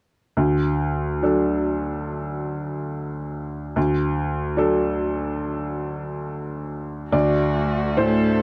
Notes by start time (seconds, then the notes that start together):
0.37 D2
1.22 F#3 D4 A4
3.76 D2
4.57 F#3 D4 A4
7.12 D2 A3 F#4 D5 F#5
7.97 A2 A4 C5